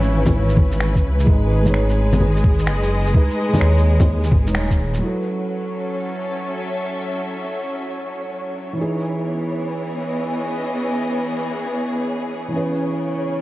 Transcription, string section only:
Already playing: C#3 C#4 E4 B4
1.27 G#3
1.36 G#4
2.13 D#5
5.02 F#3
5.21 C#4
5.68 A4
6.11 E5
8.77 E3
9.17 B3
9.65 G#4
9.91 D#5
12.53 C#3
12.67 C#4

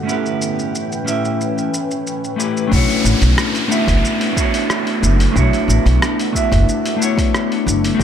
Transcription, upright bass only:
2.72 B1
3.04 A1
3.22 B1
3.87 F#1
5.03 F#1
5.36 B1
5.68 A1
5.86 B1
6.52 F#1
7.67 F#1
8.00 G1

